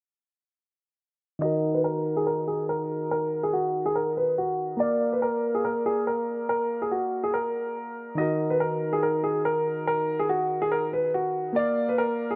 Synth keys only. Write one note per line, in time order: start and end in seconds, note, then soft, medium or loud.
1.39 4.75 D#3 medium
1.39 4.76 D#4 medium
1.43 4.77 F#4 medium
1.43 4.78 A#4 medium
4.77 8.13 A#3 medium
4.77 8.14 A#4 medium
4.81 8.15 D5 medium
4.81 8.16 F5 medium
8.15 11.51 D#3 medium
8.15 11.52 D#4 medium
8.19 11.53 F#4 medium
8.19 11.54 A#4 medium
11.53 12.36 A#3 medium
11.53 12.36 A#4 medium
11.57 12.36 D5 medium
11.57 12.36 F5 medium